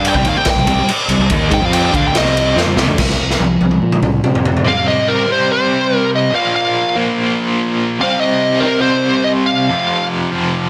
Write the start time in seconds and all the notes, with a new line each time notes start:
Already playing: G2 G3 D4 G4
0.05 G5, crash
0.14 C2 C3 G3 G5, kick
0.25 D#2 D#3 A#3, crash
0.29 F5
0.35 G5, muted fingered electric bass stroke, muted overdriven electric guitar stroke
0.45 kick, snare, crash
0.50 G5
0.56 C2 C3 G3
0.66 C2 C3 G3, crash
0.75 C2 C3 G3
0.86 muted fingered electric bass stroke, muted overdriven electric guitar stroke, crash
1.08 C2 C3 G3, crash
1.18 C2 C3 G3
1.30 D#2 D#3 A#3 D#4, kick, crash
1.50 G#2 G#3 D#4, kick, crash
1.54 G5
1.60 F2 F3 C4 F4
1.65 F5
1.73 G5, crash
1.85 G5
1.92 D2 D3 A3 D4, kick, crash
1.96 F5
2.08 G5
2.12 C2 C3 G3 C4, snare, crash
2.17 D#5
2.37 crash
2.56 F2 F3 C4 F4, snare
2.66 mid tom
2.77 C2 C3 G3, snare
2.87 D2 D3 A3, floor tom
2.98 C2, kick, snare, crash
3.10 snare
3.20 C2
3.30 snare
3.40 C2, high tom
3.61 C2, high tom
3.71 mid tom
3.82 A#2
3.92 mid tom
4.02 C2, mid tom
4.23 C3, mid tom
4.35 floor tom
4.45 floor tom
4.57 floor tom
4.64 C3 G3 C4 F5
4.88 D#5
5.08 A#4
5.27 C3 G3 C4
5.32 C5
5.52 C5
5.96 A#4
6.16 D#5
6.31 A#2 F3 A#3 F5
6.56 F5
6.95 A#2 F3 A#3
8.00 C3 G3 C4 F5
8.21 D#5
8.60 C4 A#4
8.65 C3 G3
8.82 C5
9.24 D#5
9.46 F5
9.69 F2 C3 F3
10.32 F2 C3 F3